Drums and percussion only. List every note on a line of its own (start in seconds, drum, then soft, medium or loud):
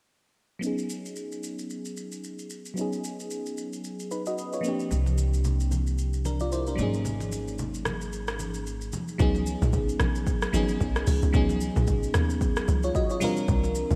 0.63 shaker medium
0.78 shaker soft
0.90 shaker medium
1.05 shaker soft
1.16 shaker medium
1.32 shaker soft
1.43 shaker medium
1.59 shaker soft
1.70 shaker medium
1.85 shaker medium
1.97 shaker medium
2.12 shaker medium
2.24 shaker medium
2.39 shaker soft
2.50 shaker medium
2.66 shaker medium
2.77 shaker medium
2.93 shaker soft
3.04 shaker medium
3.20 shaker soft
3.31 shaker medium
3.46 shaker medium
3.58 shaker medium
3.73 shaker soft
3.84 shaker medium
4.00 shaker medium
4.11 shaker medium
4.26 shaker medium
4.38 shaker medium
4.53 shaker soft
4.64 shaker medium
4.80 shaker medium
4.91 low conga medium
4.91 shaker medium
5.06 high conga medium
5.06 shaker soft
5.18 high conga soft
5.18 shaker medium
5.34 shaker soft
5.44 low conga medium
5.44 shaker medium
5.60 shaker medium
5.71 high conga medium
5.71 low conga medium
5.71 shaker medium
5.87 shaker medium
5.98 shaker medium
6.14 shaker medium
6.25 high conga medium
6.25 shaker medium
6.40 shaker medium
6.52 shaker medium
6.67 shaker soft
6.78 high conga medium
6.78 low conga medium
6.78 shaker medium
6.94 shaker medium
7.05 low conga medium
7.05 shaker medium
7.20 high conga medium
7.20 shaker soft
7.32 high conga medium
7.32 shaker medium
7.48 shaker soft
7.59 low conga medium
7.59 shaker medium
7.74 shaker medium
7.85 cross-stick medium
7.85 high conga medium
7.85 low conga medium
7.85 shaker medium
8.01 shaker soft
8.13 shaker medium
8.28 cross-stick medium
8.28 shaker medium
8.39 high conga medium
8.39 shaker medium
8.54 shaker medium
8.67 shaker medium
8.81 shaker soft
8.93 high conga medium
8.93 low conga medium
8.93 shaker medium
9.08 shaker medium
9.19 kick loud
9.19 low conga medium
9.19 shaker medium
9.35 high conga medium
9.35 shaker soft
9.46 shaker medium
9.62 mid tom loud
9.62 shaker medium
9.73 kick loud
9.73 low conga medium
9.73 shaker medium
9.89 shaker medium
10.00 cross-stick loud
10.00 high conga medium
10.00 low conga medium
10.00 shaker medium
10.15 shaker medium
10.27 kick loud
10.27 shaker medium
10.42 cross-stick medium
10.42 shaker medium
10.54 high conga medium
10.54 shaker medium
10.69 shaker medium
10.81 kick medium
10.81 shaker medium
10.96 cross-stick medium
10.96 shaker soft
11.07 open hi-hat medium
11.07 high conga medium
11.07 low conga medium
11.07 shaker medium
11.22 shaker medium
11.34 kick loud
11.34 low conga medium
11.34 shaker medium
11.49 high conga medium
11.49 shaker soft
11.61 shaker loud
11.76 mid tom loud
11.76 shaker medium
11.87 kick loud
11.87 low conga medium
11.87 shaker medium
12.03 shaker medium
12.14 cross-stick loud
12.14 high conga medium
12.14 low conga medium
12.14 shaker medium
12.30 shaker medium
12.41 kick loud
12.41 shaker medium
12.56 cross-stick medium
12.56 shaker medium
12.68 high conga medium
12.68 shaker medium
12.83 shaker medium
12.95 kick loud
12.95 shaker medium
13.10 shaker soft
13.21 open hi-hat medium
13.21 high conga medium
13.21 low conga medium
13.21 shaker medium
13.37 shaker medium
13.48 kick loud
13.48 low conga medium
13.48 shaker medium
13.64 high conga medium
13.64 shaker soft
13.75 shaker medium
13.91 mid tom medium
13.91 shaker medium